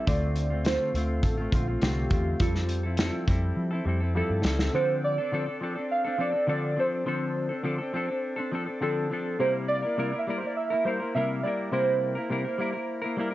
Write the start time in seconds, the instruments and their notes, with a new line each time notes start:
0.07 fingered electric bass D2, clean electric guitar D3 A3 C4 F4, synth keys D5, kick, closed hi-hat
0.36 closed hi-hat
0.50 clean electric guitar A3 C4 F4
0.65 clean electric guitar D3 A3 C4 F4, synth keys C5, snare, closed hi-hat
0.94 fingered electric bass D2, clean electric guitar D3 A3 C4 F4, closed hi-hat
1.23 fingered electric bass A1, synth keys A4, kick, closed hi-hat
1.38 clean electric guitar A3 C4 F4
1.52 fingered electric bass A#1, clean electric guitar D3 A3 C4 F4, synth keys F4, kick, closed hi-hat
1.68 clean electric guitar A3 C4 F4
1.81 fingered electric bass C2, clean electric guitar D3 A3 C4 F4, synth keys G4, snare, closed hi-hat
2.10 fingered electric bass E2, clean electric guitar D3 A3 C4 F4, kick, closed hi-hat
2.40 fingered electric bass F2, clean electric guitar F3 G3 C4 A4, synth keys F4, kick, closed hi-hat
2.55 snare
2.69 closed hi-hat
2.83 clean electric guitar C4 E4 A4
2.97 clean electric guitar F3 G3 C4 E4 A4, snare, closed hi-hat
3.27 fingered electric bass F2, clean electric guitar G3 C4 E4 A4, kick, closed hi-hat
3.57 fingered electric bass F3
3.71 clean electric guitar C4 E4 A4
3.85 fingered electric bass F2, clean electric guitar G3 C4 E4 A4
4.00 clean electric guitar C4 E4 A4
4.15 clean electric guitar F3 G3 C4 E4 A4, synth keys A4
4.30 fingered electric bass G2
4.44 fingered electric bass C#2, clean electric guitar G3 C4 E4 A4, snare
4.59 snare
4.73 clean electric guitar D3 F3 C4 D4 A4, synth keys C5
5.04 synth keys D5
5.18 clean electric guitar C4 D4 A4
5.32 clean electric guitar D3 F3 C4 D4 A4
5.46 clean electric guitar C4 D4 A4
5.60 clean electric guitar F3 C4 D4 A4
5.75 clean electric guitar C4 D4 A4
5.91 synth keys F5
6.04 clean electric guitar C4 D4 A4
6.18 clean electric guitar F3 C4 D4 A4, synth keys D5
6.32 clean electric guitar C4 D4 A4
6.47 clean electric guitar D3 F3 C4 D4 A4, synth keys D5
6.76 clean electric guitar F3 C4 D4 A4, synth keys C5
7.06 clean electric guitar D3 F3 C4 D4 A4, synth keys C5
7.49 clean electric guitar C4 D4 A4
7.63 clean electric guitar D3 F3 C4 D4 A4
7.78 clean electric guitar C4 D4 A4
7.93 clean electric guitar F3 C4 D4 A4
8.08 clean electric guitar C4 D4 A4
8.36 clean electric guitar C4 D4 A4
8.52 clean electric guitar F3 C4 D4 A4
8.66 clean electric guitar C4 D4 A4
8.81 clean electric guitar D3 F3 C4 D4 A4, synth keys A4
9.10 clean electric guitar F3 C4 D4 A4
9.39 clean electric guitar C3 G3 A#3 E4 A#4, synth keys C5
9.68 synth keys D5
9.82 clean electric guitar E4 A#4
9.86 clean electric guitar A#3
9.97 clean electric guitar C3 G3 A#3 E4 A#4
10.12 clean electric guitar A#3 E4 A#4
10.19 synth keys E5
10.27 clean electric guitar G3 A#3 E4 A#4, synth keys D5
10.37 clean electric guitar A#4, synth keys C5
10.43 clean electric guitar A#3 E4
10.47 synth keys D5
10.57 synth keys E5
10.70 clean electric guitar A#3 E4 A#4
10.85 clean electric guitar G3 A#3 E4 A#4, synth keys C5
11.00 clean electric guitar A#3 E4 A#4
11.15 clean electric guitar C3 G3 A#3 E4 A#4, synth keys E5
11.43 clean electric guitar G3 A#3 E4, synth keys D5
11.47 clean electric guitar A#4
11.72 clean electric guitar C3 G3 A#3 E4 A#4, synth keys C5
12.15 clean electric guitar A#3 E4 A#4
12.30 clean electric guitar C3 G3 A#3 E4 A#4
12.44 clean electric guitar A#3 E4 A#4
12.58 clean electric guitar G3 A#3 E4 A#4
12.73 clean electric guitar A#3 E4 A#4
13.02 clean electric guitar A#3 E4 A#4
13.16 clean electric guitar G3 A#3 E4 A#4
13.31 clean electric guitar A#4